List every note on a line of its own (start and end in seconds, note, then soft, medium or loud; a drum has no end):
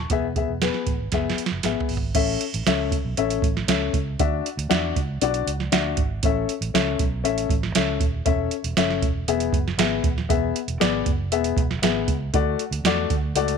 0.00 0.22 C#6 medium
0.10 0.42 E1 loud
0.10 0.25 B3 loud
0.10 0.25 G#4 medium
0.10 0.25 E5 loud
0.10 kick loud
0.10 closed hi-hat medium
0.36 0.50 B3 medium
0.36 0.50 G#4 medium
0.36 0.51 E5 medium
0.36 kick medium
0.36 closed hi-hat medium
0.48 0.69 E1 medium
0.61 0.89 B3 medium
0.61 0.90 G#4 medium
0.61 0.90 B4 medium
0.61 snare loud
0.61 closed hi-hat medium
0.74 snare soft
0.87 0.97 A1 medium
0.87 kick medium
0.87 closed hi-hat medium
1.00 1.11 G#1 medium
1.12 1.33 F#1 medium
1.12 1.41 B3 medium
1.12 1.41 G#4 medium
1.12 1.41 E5 medium
1.12 kick medium
1.12 snare soft
1.12 closed hi-hat medium
1.30 snare medium
1.38 muted fingered electric bass stroke soft
1.38 closed hi-hat medium
1.46 snare medium
1.51 1.62 F#1 medium
1.63 1.74 G#1 medium
1.63 1.92 B3 medium
1.63 1.92 G#4 medium
1.63 1.92 E5 medium
1.63 snare medium
1.63 closed hi-hat medium
1.80 floor tom medium
1.89 2.10 G#1 medium
1.89 open hi-hat soft
1.97 floor tom medium
2.15 2.36 A1 loud
2.15 2.43 C#4 medium
2.15 2.43 A4 medium
2.15 2.43 E5 loud
2.15 kick loud
2.15 closed hi-hat medium
2.15 crash medium
2.41 closed hi-hat medium
2.54 2.64 A1 loud
2.54 closed hi-hat medium
2.66 2.97 C#2 medium
2.66 2.94 C#4 medium
2.66 2.94 A4 medium
2.66 2.94 E5 medium
2.66 snare loud
2.66 closed hi-hat medium
2.92 kick loud
2.92 closed hi-hat medium
3.05 3.15 B1 medium
3.17 3.38 A1 medium
3.17 3.45 C#4 medium
3.17 3.45 A4 medium
3.17 3.45 E5 medium
3.17 closed hi-hat medium
3.30 closed hi-hat medium
3.42 3.63 A1 medium
3.42 kick loud
3.42 closed hi-hat medium
3.57 snare soft
3.68 3.89 C#2 medium
3.68 3.96 C#4 medium
3.68 3.96 A4 medium
3.68 3.96 E5 medium
3.68 snare loud
3.68 closed hi-hat loud
3.94 4.14 C#2 medium
3.94 kick loud
3.94 closed hi-hat medium
4.20 4.40 D2 loud
4.20 4.47 D4 medium
4.20 4.47 F#4 medium
4.20 4.47 E5 medium
4.20 kick loud
4.20 closed hi-hat medium
4.46 closed hi-hat medium
4.57 4.68 D2 loud
4.57 closed hi-hat medium
4.69 4.91 E2 medium
4.69 4.98 D4 medium
4.69 4.97 F#4 medium
4.69 4.98 E5 loud
4.69 snare loud
4.69 closed hi-hat medium
4.96 5.17 C#2 medium
4.96 kick loud
4.96 closed hi-hat medium
5.22 5.42 B1 medium
5.22 5.49 D4 medium
5.22 5.49 F#4 medium
5.22 5.49 D5 loud
5.22 closed hi-hat medium
5.34 closed hi-hat medium
5.46 5.67 C#2 medium
5.46 closed hi-hat medium
5.60 snare soft
5.72 5.93 D2 medium
5.72 6.00 D4 medium
5.72 6.00 F#4 medium
5.72 6.00 E5 medium
5.72 snare loud
5.72 closed hi-hat loud
5.97 6.18 G#1 medium
5.97 kick loud
5.97 closed hi-hat medium
6.23 6.44 A1 loud
6.23 6.51 C#4 medium
6.23 6.51 A4 medium
6.23 6.52 E5 medium
6.23 kick loud
6.23 closed hi-hat medium
6.49 closed hi-hat medium
6.61 6.71 A1 medium
6.61 closed hi-hat medium
6.74 6.95 C#2 loud
6.74 7.02 C#4 medium
6.74 7.02 A4 medium
6.74 7.02 E5 loud
6.74 snare loud
6.74 closed hi-hat medium
6.99 7.25 B1 medium
6.99 kick loud
6.99 closed hi-hat medium
7.24 7.46 A1 medium
7.24 7.52 C#4 medium
7.24 7.52 A4 medium
7.24 7.52 E5 medium
7.24 closed hi-hat medium
7.38 closed hi-hat medium
7.50 7.71 A1 medium
7.50 kick loud
7.50 closed hi-hat medium
7.63 snare soft
7.75 7.97 C#2 loud
7.75 8.03 C#4 medium
7.75 8.03 A4 medium
7.75 8.04 E5 medium
7.75 snare loud
7.75 closed hi-hat loud
8.00 8.22 D#1 medium
8.00 kick loud
8.00 closed hi-hat medium
8.25 8.47 E1 loud
8.25 8.54 C#4 medium
8.25 8.54 A4 medium
8.25 8.54 E5 loud
8.25 kick loud
8.25 closed hi-hat medium
8.51 closed hi-hat medium
8.64 8.75 E1 loud
8.64 closed hi-hat medium
8.77 9.02 F#1 medium
8.77 9.05 C#4 medium
8.77 9.05 A4 medium
8.77 9.05 E5 loud
8.77 snare loud
8.77 closed hi-hat medium
8.90 snare soft
9.02 9.23 E1 loud
9.02 kick loud
9.02 closed hi-hat medium
9.28 9.49 E1 loud
9.28 9.56 B3 medium
9.28 9.56 G#4 medium
9.28 9.56 E5 medium
9.28 closed hi-hat medium
9.40 closed hi-hat medium
9.53 9.74 F#1 medium
9.53 kick medium
9.53 closed hi-hat medium
9.68 snare soft
9.77 9.99 G#1 medium
9.77 10.06 B3 medium
9.77 10.07 G#4 medium
9.77 10.07 E5 medium
9.77 snare loud
9.77 closed hi-hat loud
10.04 10.25 D#1 medium
10.04 kick loud
10.04 closed hi-hat medium
10.18 snare soft
10.29 10.51 E1 loud
10.29 10.57 B3 medium
10.29 10.58 G#4 medium
10.29 10.58 E5 medium
10.29 kick loud
10.29 closed hi-hat medium
10.56 closed hi-hat medium
10.68 10.78 E1 medium
10.68 closed hi-hat medium
10.80 11.02 G#1 medium
10.80 11.08 B3 medium
10.80 11.08 G#4 medium
10.80 11.09 D5 loud
10.80 snare loud
10.80 closed hi-hat medium
11.06 11.32 F#1 medium
11.06 kick loud
11.06 closed hi-hat medium
11.32 11.53 E1 medium
11.32 11.60 B3 medium
11.32 11.60 G#4 medium
11.32 11.60 E5 medium
11.32 closed hi-hat medium
11.44 closed hi-hat medium
11.57 11.78 E1 medium
11.57 kick loud
11.57 closed hi-hat medium
11.71 snare soft
11.82 12.03 G#1 medium
11.82 12.10 B3 medium
11.82 12.11 G#4 medium
11.82 12.11 E5 medium
11.82 snare loud
11.82 closed hi-hat loud
12.08 12.29 C#2 medium
12.08 kick loud
12.08 closed hi-hat medium
12.33 12.55 D2 loud
12.33 12.61 A3 medium
12.33 12.62 F#4 medium
12.33 12.62 D5 medium
12.33 kick loud
12.33 closed hi-hat medium
12.59 closed hi-hat medium
12.71 12.82 D2 loud
12.71 closed hi-hat medium
12.84 13.05 E2 medium
12.84 13.13 A3 medium
12.84 13.13 F#4 medium
12.84 13.13 D5 loud
12.84 snare loud
12.84 closed hi-hat medium
13.10 13.31 D2 loud
13.10 kick loud
13.10 closed hi-hat medium
13.34 13.56 C#2 medium
13.34 13.58 A3 medium
13.34 13.58 F#4 medium
13.34 13.58 D5 loud
13.34 closed hi-hat medium
13.48 closed hi-hat medium